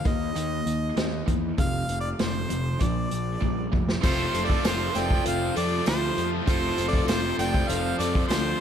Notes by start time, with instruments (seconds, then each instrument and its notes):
0.05 picked electric bass D#2, overdriven electric guitar D#3 A#3, harmonica D#5, kick, closed hi-hat
0.35 picked electric bass D#2, overdriven electric guitar D#3 A#3, closed hi-hat
0.66 picked electric bass D#2, closed hi-hat
0.96 picked electric bass D#2, overdriven electric guitar D#3 C4, snare, closed hi-hat
1.27 picked electric bass E2, overdriven electric guitar D#3 A#3, kick, closed hi-hat
1.58 picked electric bass F1, overdriven electric guitar F2 C3, harmonica F5, kick, closed hi-hat
1.88 picked electric bass F1, closed hi-hat
2.01 harmonica D5
2.19 picked electric bass F1, overdriven electric guitar F2 D3, harmonica C5, snare, closed hi-hat
2.50 picked electric bass F1, overdriven electric guitar F2 C3, closed hi-hat
2.80 picked electric bass A#1, overdriven electric guitar A#2 F3, harmonica D5, kick, closed hi-hat
3.11 picked electric bass A#1, closed hi-hat
3.42 picked electric bass A#1, overdriven electric guitar A#2 G3, kick
3.72 picked electric bass F1, overdriven electric guitar A#2 F3, kick
3.89 snare
4.03 picked electric bass F1, overdriven electric guitar F2 C3 F3 A3 C4 F4, reed electric piano F4 A4 C5, lead electric guitar F4, distorted electric guitar A4, harmonica C5, kick, crash, tambourine
4.34 picked electric bass F1, reed electric piano F4 A4 C5, closed hi-hat, tambourine
4.45 lead electric guitar A4, harmonica D5
4.50 kick
4.64 picked electric bass F1, reed electric piano F4 A4 C5, lead electric guitar F4, harmonica C5, snare, closed hi-hat, tambourine
4.95 picked electric bass F1, reed electric piano F4 A4 C5, lead electric guitar D5, harmonica G5, snare, closed hi-hat, tambourine
5.11 kick
5.24 picked electric bass F1, reed electric piano F4 A4 C5, lead electric guitar C5, harmonica F5, closed hi-hat
5.56 picked electric bass F2, overdriven electric guitar F2 C3 F3 A3 C4 F4, reed electric piano F4 A4 C5, lead electric guitar A4, harmonica D5, closed hi-hat, tambourine
5.86 picked electric bass D2, overdriven electric guitar F2 C3 F3 A3 C4 F4, reed electric piano F4 A4 C5, lead electric guitar F4, harmonica C5, snare, closed hi-hat, tambourine
6.16 picked electric bass F2, reed electric piano F4 A4 C5, closed hi-hat
6.46 picked electric bass F1, overdriven electric guitar F2 C3 F3 A3 C4 F4, reed electric piano F4 A4 C5, lead electric guitar F4, distorted electric guitar A4, harmonica C5, kick, closed hi-hat, tambourine
6.78 picked electric bass F1, reed electric piano F4 A4 C5, closed hi-hat, tambourine
6.88 lead electric guitar A4, harmonica D5
6.93 kick
7.07 picked electric bass F1, reed electric piano F4 A4 C5, lead electric guitar F4, harmonica C5, snare, closed hi-hat, tambourine
7.38 picked electric bass F1, reed electric piano F4 A4 C5, lead electric guitar D5, harmonica G5, closed hi-hat, tambourine
7.54 kick
7.68 picked electric bass F1, reed electric piano F4 A4 C5, lead electric guitar C5, harmonica F5, closed hi-hat
7.98 picked electric bass F2, overdriven electric guitar F2 C3 F3 A3 C4 F4, reed electric piano F4 A4 C5, lead electric guitar A4, harmonica D5, closed hi-hat, tambourine
8.15 kick
8.28 picked electric bass D2, overdriven electric guitar F2 C3 F3 A3 C4 F4, reed electric piano F4 A4 C5, lead electric guitar F4, harmonica C5, snare, closed hi-hat, tambourine